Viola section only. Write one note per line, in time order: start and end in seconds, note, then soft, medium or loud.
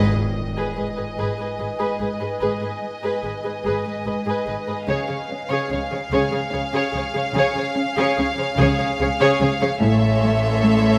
0.00 0.14 G#4 medium
0.16 0.24 G#4 soft
0.57 0.76 G#4 soft
0.78 0.86 G#4 soft
0.98 1.06 G#4 soft
1.18 1.37 G#4 soft
1.38 1.46 G#4 soft
1.59 1.67 G#4 soft
1.79 1.99 G#4 soft
2.00 2.08 G#4 soft
2.21 2.29 G#4 soft
2.41 2.61 G#4 soft
2.62 2.70 G#4 soft
3.03 3.22 G#4 soft
3.23 3.31 G#4 soft
3.44 3.52 G#4 soft
3.64 3.83 G#4 soft
3.84 3.92 G#4 soft
4.05 4.13 G#4 soft
4.26 4.45 G#4 soft
4.46 4.54 G#4 soft
4.67 4.75 G#4 soft
4.88 5.07 G#4 soft
5.08 5.16 G#4 soft
5.50 5.69 G#4 medium
5.70 5.78 G#4 soft
5.91 5.99 G#4 soft
6.11 6.30 G#4 medium
6.31 6.39 G#4 soft
6.53 6.61 G#4 soft
6.73 6.92 G#4 medium
6.94 7.02 G#4 medium
7.14 7.22 G#4 soft
7.35 7.54 G#4 medium
7.55 7.63 G#4 soft
7.97 8.16 G#4 medium
8.17 8.25 G#4 medium
8.38 8.46 G#4 soft
8.58 8.77 G#4 medium
8.79 8.87 G#4 medium
9.00 9.08 G#4 medium
9.20 9.39 G#4 medium
9.41 9.49 G#4 medium
9.61 9.69 G#4 medium
9.82 10.98 A4 medium